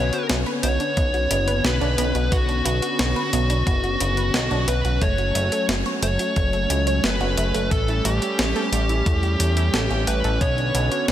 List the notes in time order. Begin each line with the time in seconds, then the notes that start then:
Already playing: B1 D3 B3 C#4 C#5
0.13 F#4, closed hi-hat
0.30 B1 B3, snare, closed hi-hat
0.46 B4, closed hi-hat
0.63 B1 B3 C#5, closed hi-hat
0.80 D4, closed hi-hat
0.97 B1 B3, kick, closed hi-hat
1.14 F#4, closed hi-hat
1.31 F#1 B3, closed hi-hat
1.48 B4, closed hi-hat
1.64 B1 B3 B4, snare, closed hi-hat
1.81 B1 D4, closed hi-hat
1.98 B1 B3, closed hi-hat
2.15 B1 F#4, closed hi-hat
2.32 B1 B3 F#4, kick, closed hi-hat
2.49 D4, closed hi-hat
2.66 B1 B3 F#4, closed hi-hat
2.82 F#4, closed hi-hat
2.99 B1 B3, snare, closed hi-hat
3.16 B4, closed hi-hat
3.33 B1 B3, closed hi-hat
3.50 D4, closed hi-hat
3.67 F#1 B3, kick, closed hi-hat
3.84 F#4, closed hi-hat
4.00 F#1 B3, closed hi-hat
4.17 B4, closed hi-hat
4.34 B1 B3, snare, closed hi-hat
4.51 B1 D4, closed hi-hat
4.68 B1 B3 B4, closed hi-hat
4.85 B1 F#4, closed hi-hat
5.01 F#1 F#3 A3 C#5, kick, closed hi-hat
5.18 F#4, closed hi-hat
5.35 F#1 A3, closed hi-hat
5.52 A4, closed hi-hat
5.69 F#1 A3, snare, closed hi-hat
5.86 C#5, closed hi-hat
6.02 F#1 A3 C#5, closed hi-hat
6.19 F#4, closed hi-hat
6.36 F#1 A3, kick, closed hi-hat
6.53 A4, closed hi-hat
6.70 C#2 A3, closed hi-hat
6.87 C#5, closed hi-hat
7.04 F#1 A3 B4, snare, closed hi-hat
7.21 F#1 F#4, closed hi-hat
7.37 F#1 A3, closed hi-hat
7.54 F#1 A4, closed hi-hat
7.71 A1 G3 A3 A4, kick, closed hi-hat
7.88 E4, closed hi-hat
8.05 A1 A3 G4, closed hi-hat
8.22 G4, closed hi-hat
8.39 A1 A3, snare, closed hi-hat
8.56 A4, closed hi-hat
8.72 A1 A3, closed hi-hat
8.89 E4, closed hi-hat
9.06 E2 A3, kick, closed hi-hat
9.23 G4, closed hi-hat
9.40 E2 A3, closed hi-hat
9.57 E4, closed hi-hat
9.74 A1 A4, snare, closed hi-hat
9.91 A1 C#4, closed hi-hat
10.07 A1 G4 B4, closed hi-hat
10.24 A1 A4, closed hi-hat
10.41 B1 D3 B3 C#5, kick, closed hi-hat
10.58 D4, closed hi-hat
10.75 B1 B3, closed hi-hat
10.92 F#4, closed hi-hat
11.08 B1 B3, snare, closed hi-hat